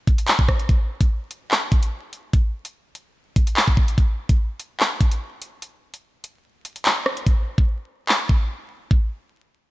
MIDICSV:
0, 0, Header, 1, 2, 480
1, 0, Start_track
1, 0, Tempo, 410959
1, 806, Time_signature, 4, 2, 24, 8
1, 11340, End_track
2, 0, Start_track
2, 0, Title_t, "Drums"
2, 87, Note_on_c, 9, 36, 110
2, 87, Note_on_c, 9, 42, 84
2, 204, Note_off_c, 9, 36, 0
2, 204, Note_off_c, 9, 42, 0
2, 214, Note_on_c, 9, 42, 86
2, 326, Note_off_c, 9, 42, 0
2, 326, Note_on_c, 9, 42, 85
2, 327, Note_on_c, 9, 39, 122
2, 443, Note_off_c, 9, 39, 0
2, 443, Note_off_c, 9, 42, 0
2, 454, Note_on_c, 9, 36, 88
2, 566, Note_off_c, 9, 36, 0
2, 566, Note_on_c, 9, 36, 103
2, 567, Note_on_c, 9, 37, 89
2, 683, Note_off_c, 9, 36, 0
2, 684, Note_off_c, 9, 37, 0
2, 694, Note_on_c, 9, 42, 51
2, 807, Note_off_c, 9, 42, 0
2, 807, Note_on_c, 9, 36, 121
2, 807, Note_on_c, 9, 42, 77
2, 924, Note_off_c, 9, 36, 0
2, 924, Note_off_c, 9, 42, 0
2, 1174, Note_on_c, 9, 36, 94
2, 1174, Note_on_c, 9, 42, 88
2, 1291, Note_off_c, 9, 36, 0
2, 1291, Note_off_c, 9, 42, 0
2, 1526, Note_on_c, 9, 42, 78
2, 1643, Note_off_c, 9, 42, 0
2, 1767, Note_on_c, 9, 39, 106
2, 1883, Note_off_c, 9, 39, 0
2, 2006, Note_on_c, 9, 42, 86
2, 2007, Note_on_c, 9, 36, 102
2, 2123, Note_off_c, 9, 42, 0
2, 2124, Note_off_c, 9, 36, 0
2, 2134, Note_on_c, 9, 42, 83
2, 2251, Note_off_c, 9, 42, 0
2, 2486, Note_on_c, 9, 42, 82
2, 2603, Note_off_c, 9, 42, 0
2, 2726, Note_on_c, 9, 36, 123
2, 2726, Note_on_c, 9, 42, 80
2, 2843, Note_off_c, 9, 36, 0
2, 2843, Note_off_c, 9, 42, 0
2, 3094, Note_on_c, 9, 42, 86
2, 3211, Note_off_c, 9, 42, 0
2, 3446, Note_on_c, 9, 42, 81
2, 3563, Note_off_c, 9, 42, 0
2, 3926, Note_on_c, 9, 42, 88
2, 3927, Note_on_c, 9, 36, 104
2, 4043, Note_off_c, 9, 36, 0
2, 4043, Note_off_c, 9, 42, 0
2, 4054, Note_on_c, 9, 42, 84
2, 4166, Note_off_c, 9, 42, 0
2, 4166, Note_on_c, 9, 42, 84
2, 4167, Note_on_c, 9, 39, 122
2, 4283, Note_off_c, 9, 42, 0
2, 4284, Note_off_c, 9, 39, 0
2, 4294, Note_on_c, 9, 36, 87
2, 4406, Note_off_c, 9, 36, 0
2, 4406, Note_on_c, 9, 36, 100
2, 4522, Note_off_c, 9, 36, 0
2, 4534, Note_on_c, 9, 42, 79
2, 4646, Note_off_c, 9, 42, 0
2, 4646, Note_on_c, 9, 36, 117
2, 4646, Note_on_c, 9, 42, 79
2, 4763, Note_off_c, 9, 36, 0
2, 4763, Note_off_c, 9, 42, 0
2, 5013, Note_on_c, 9, 42, 83
2, 5014, Note_on_c, 9, 36, 98
2, 5130, Note_off_c, 9, 42, 0
2, 5131, Note_off_c, 9, 36, 0
2, 5366, Note_on_c, 9, 42, 81
2, 5483, Note_off_c, 9, 42, 0
2, 5607, Note_on_c, 9, 39, 107
2, 5723, Note_off_c, 9, 39, 0
2, 5847, Note_on_c, 9, 36, 106
2, 5847, Note_on_c, 9, 42, 86
2, 5963, Note_off_c, 9, 36, 0
2, 5963, Note_off_c, 9, 42, 0
2, 5974, Note_on_c, 9, 42, 85
2, 6091, Note_off_c, 9, 42, 0
2, 6327, Note_on_c, 9, 42, 81
2, 6444, Note_off_c, 9, 42, 0
2, 6567, Note_on_c, 9, 42, 80
2, 6683, Note_off_c, 9, 42, 0
2, 6934, Note_on_c, 9, 42, 87
2, 7051, Note_off_c, 9, 42, 0
2, 7287, Note_on_c, 9, 42, 80
2, 7404, Note_off_c, 9, 42, 0
2, 7766, Note_on_c, 9, 42, 86
2, 7883, Note_off_c, 9, 42, 0
2, 7894, Note_on_c, 9, 42, 85
2, 8007, Note_off_c, 9, 42, 0
2, 8007, Note_on_c, 9, 39, 120
2, 8007, Note_on_c, 9, 42, 85
2, 8123, Note_off_c, 9, 42, 0
2, 8124, Note_off_c, 9, 39, 0
2, 8247, Note_on_c, 9, 37, 95
2, 8364, Note_off_c, 9, 37, 0
2, 8374, Note_on_c, 9, 42, 50
2, 8486, Note_on_c, 9, 36, 114
2, 8487, Note_off_c, 9, 42, 0
2, 8487, Note_on_c, 9, 42, 75
2, 8603, Note_off_c, 9, 36, 0
2, 8603, Note_off_c, 9, 42, 0
2, 8854, Note_on_c, 9, 36, 92
2, 8971, Note_off_c, 9, 36, 0
2, 9446, Note_on_c, 9, 39, 103
2, 9563, Note_off_c, 9, 39, 0
2, 9686, Note_on_c, 9, 36, 103
2, 9803, Note_off_c, 9, 36, 0
2, 10406, Note_on_c, 9, 36, 117
2, 10523, Note_off_c, 9, 36, 0
2, 11340, End_track
0, 0, End_of_file